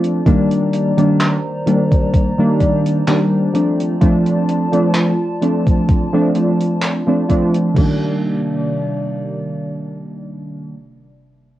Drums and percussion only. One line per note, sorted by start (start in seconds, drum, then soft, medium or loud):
0.04 closed hi-hat medium
0.26 kick loud
0.26 closed hi-hat medium
0.51 closed hi-hat medium
0.73 closed hi-hat medium
0.98 closed hi-hat medium
1.21 clap loud
1.21 closed hi-hat medium
1.67 closed hi-hat medium
1.92 kick loud
1.92 closed hi-hat medium
2.14 kick loud
2.14 closed hi-hat medium
2.60 kick medium
2.60 closed hi-hat medium
2.86 closed hi-hat medium
3.07 clap loud
3.07 closed hi-hat medium
3.55 closed hi-hat medium
3.80 closed hi-hat medium
4.01 kick loud
4.01 closed hi-hat medium
4.26 closed hi-hat medium
4.49 closed hi-hat medium
4.73 closed hi-hat medium
4.95 clap loud
4.95 closed hi-hat medium
5.42 closed hi-hat medium
5.67 kick loud
5.67 closed hi-hat medium
5.89 kick loud
5.89 closed hi-hat medium
6.35 closed hi-hat medium
6.60 closed hi-hat medium
6.82 clap loud
6.82 closed hi-hat medium
7.29 kick medium
7.29 closed hi-hat medium
7.54 closed hi-hat medium
7.76 kick loud
7.76 crash medium